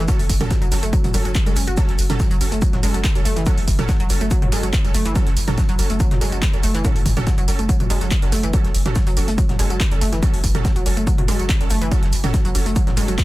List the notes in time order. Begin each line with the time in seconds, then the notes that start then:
0.08 F#3 C#4 A4, kick, closed hi-hat, tambourine, shaker
0.19 F#1, open hi-hat, tambourine
0.29 F#1, kick, open hi-hat, tambourine, shaker
0.41 F#1 F#3 C#4 A4, closed hi-hat, mid tom, tambourine
0.50 F#3, kick, snare, closed hi-hat, tambourine, shaker
0.62 F#1 F#3, closed hi-hat, tambourine
0.71 F#1 F#3 C#4 A4, snare, open hi-hat, tambourine, shaker
0.83 F#1 A3, closed hi-hat, tambourine
0.93 F#3, kick, closed hi-hat, tambourine, shaker
1.04 F#1 F#3, closed hi-hat, mid tom, tambourine
1.14 F#1 F#3 C#4 A4, open hi-hat, tambourine, shaker
1.25 F#1 F#3, closed hi-hat, tambourine
1.35 kick, snare, clap, closed hi-hat, tambourine, shaker
1.46 F#1 F#3 G#3 C#4 A4, closed hi-hat, tambourine
1.55 F#1 C#4, open hi-hat, tambourine, shaker
1.67 F#1 F#4, closed hi-hat, tambourine
1.77 F#3 C#4 A4, kick, closed hi-hat, tambourine, shaker
1.88 F#1, snare, closed hi-hat
1.98 F#1, open hi-hat, tambourine, shaker
2.10 F#1 F#3 C#4 A4, snare, closed hi-hat, mid tom, tambourine
2.19 F#3, kick, snare, closed hi-hat, tambourine, shaker
2.31 F#1 F#3, closed hi-hat, tambourine
2.41 F#1 F#3 C#4 A4, open hi-hat, tambourine, shaker
2.52 F#1 A3, closed hi-hat, tambourine
2.61 F#3, kick, closed hi-hat, tambourine, shaker
2.73 F#1 F#3, snare, closed hi-hat, mid tom
2.83 F#1 F#3 G#3 C#4 A4, open hi-hat, tambourine, shaker
2.94 F#1 F#3, closed hi-hat, tambourine
3.04 kick, snare, clap, closed hi-hat, tambourine, shaker
3.15 F#1 F#3 C#4 A4, closed hi-hat, tambourine
3.25 F#1 A3, open hi-hat, tambourine, shaker
3.36 F#1 E3, snare, closed hi-hat, tambourine
3.46 F#3 C#4 A4, kick, closed hi-hat, tambourine, shaker
3.58 F#1, open hi-hat
3.68 F#1, kick, open hi-hat, tambourine, shaker
3.79 F#1 F#3 C#4 A4, closed hi-hat, mid tom, tambourine
3.88 F#3, kick, snare, closed hi-hat, tambourine, shaker
4.00 F#1 F#3, closed hi-hat, tambourine
4.10 F#1 F#3 C#4 A4, open hi-hat, tambourine, shaker
4.21 F#1 A3, closed hi-hat, tambourine
4.31 F#3, kick, closed hi-hat, tambourine, shaker
4.42 F#1 F#3, closed hi-hat, mid tom
4.52 F#1 F#3 G#3 C#4 A4, open hi-hat, tambourine, shaker
4.63 F#1 F#3, closed hi-hat, tambourine
4.73 kick, snare, clap, closed hi-hat, tambourine, shaker
4.84 F#1 F#3 C#4 A4, closed hi-hat, tambourine
4.94 F#1 A3, open hi-hat, tambourine, shaker
5.05 F#1 E3, closed hi-hat, tambourine
5.15 F#3 C#4 A4, kick, closed hi-hat, tambourine, shaker
5.26 F#1, snare, closed hi-hat
5.36 F#1, open hi-hat, tambourine, shaker
5.47 F#1 F#3 C#4 A4, snare, closed hi-hat, mid tom, tambourine
5.58 F#3, kick, snare, closed hi-hat, tambourine, shaker
5.69 F#1 F#3, closed hi-hat, tambourine
5.79 F#1 F#3 C#4 A4, open hi-hat, tambourine, shaker
5.90 F#1 A3, closed hi-hat, tambourine
6.00 F#3, kick, closed hi-hat, tambourine, shaker
6.11 F#1 F#3, snare, closed hi-hat, mid tom
6.21 F#1 F#3 G#3 C#4 A4, open hi-hat, tambourine, shaker
6.32 F#1 F#3, closed hi-hat, tambourine
6.42 kick, snare, clap, closed hi-hat, tambourine, shaker
6.53 F#1 F#3 C#4 A4, closed hi-hat, tambourine
6.63 F#1 A3, open hi-hat, tambourine, shaker
6.74 F#1 E3, snare, closed hi-hat, tambourine
6.85 F#3 C#4 A4, kick, closed hi-hat, mid tom, tambourine, shaker
6.96 F#1, open hi-hat, tambourine
7.06 F#1, kick, mid tom, open hi-hat, tambourine, shaker
7.17 F#1 F#3 C#4 A4, closed hi-hat, mid tom, tambourine
7.27 F#3, kick, snare, closed hi-hat, tambourine, shaker
7.38 F#1 F#3, closed hi-hat, tambourine
7.48 F#1 F#3 C#4 A4, open hi-hat, tambourine, shaker
7.59 F#1 A3, closed hi-hat, tambourine
7.69 F#3, kick, closed hi-hat, tambourine, shaker
7.80 F#1 F#3, closed hi-hat, mid tom, tambourine
7.90 F#1 F#3 G#3 C#4 A4, open hi-hat, tambourine, shaker
8.01 F#1 F#3, snare, closed hi-hat, tambourine
8.11 kick, snare, clap, closed hi-hat, tambourine, shaker
8.22 F#1 F#3 C#4 A4, closed hi-hat, tambourine
8.32 F#1 A3, snare, open hi-hat, tambourine, shaker
8.43 F#1 E3, closed hi-hat, tambourine
8.53 F#3 C#4 A4, kick, closed hi-hat, tambourine, shaker
8.65 F#1, snare, closed hi-hat
8.75 F#1, open hi-hat, tambourine, shaker
8.86 F#1 F#3 C#4 A4, snare, closed hi-hat, mid tom, tambourine
8.95 F#3, kick, snare, closed hi-hat, tambourine, shaker
9.07 F#1 F#3, closed hi-hat, tambourine
9.17 F#1 F#3 C#4 A4, open hi-hat, tambourine, shaker
9.28 F#1 A3, closed hi-hat, tambourine
9.38 F#3, kick, closed hi-hat, tambourine, shaker
9.49 F#1 F#3, snare, closed hi-hat, mid tom
9.59 F#1 F#3 G#3 C#4 A4, open hi-hat, tambourine, shaker
9.70 F#1 F#3, closed hi-hat, tambourine
9.80 kick, snare, clap, closed hi-hat, tambourine, shaker
9.91 F#1 F#3 C#4 A4, closed hi-hat, tambourine
10.01 F#1 A3, open hi-hat, tambourine, shaker
10.12 F#1 E3, snare, closed hi-hat, tambourine
10.22 F#3 C#4 A4, kick, closed hi-hat, tambourine, shaker
10.34 F#1, open hi-hat
10.44 F#1, kick, open hi-hat, tambourine, shaker
10.55 F#1 F#3 C#4 A4, closed hi-hat, mid tom, tambourine
10.65 F#3, kick, snare, closed hi-hat, tambourine, shaker
10.76 F#1 F#3, closed hi-hat, tambourine
10.86 F#1 F#3 C#4 A4, open hi-hat, tambourine, shaker
10.97 F#1 A3, closed hi-hat, tambourine
11.07 F#3, kick, closed hi-hat, tambourine, shaker
11.18 F#1 F#3, closed hi-hat, mid tom
11.28 F#1 F#3 G#3 C#4 A4, open hi-hat, tambourine, shaker
11.39 F#1 F#3, closed hi-hat, tambourine
11.49 kick, snare, clap, closed hi-hat, tambourine, shaker
11.60 F#1 F#3 C#4 A4, closed hi-hat, tambourine
11.70 F#1 A3, open hi-hat, tambourine, shaker
11.81 F#1 E3, closed hi-hat, tambourine
11.91 F#3 C#4 A4, kick, closed hi-hat, tambourine, shaker
12.03 F#1, snare, closed hi-hat
12.12 F#1, open hi-hat, tambourine, shaker
12.24 F#1 F#3 C#4 A4, snare, closed hi-hat, mid tom, tambourine
12.33 F#3, kick, snare, closed hi-hat, tambourine, shaker
12.45 F#1 F#3, closed hi-hat, tambourine
12.55 F#1 F#3 C#4 A4, open hi-hat, tambourine, shaker
12.66 F#1 A3, closed hi-hat, tambourine
12.76 F#3, kick, closed hi-hat, tambourine, shaker
12.87 F#1 F#3, snare, closed hi-hat, mid tom
12.97 F#1 F#3 G#3 C#4 A4, open hi-hat, tambourine, shaker
13.08 F#1 F#3, closed hi-hat, tambourine
13.18 kick, snare, clap, closed hi-hat, tambourine, shaker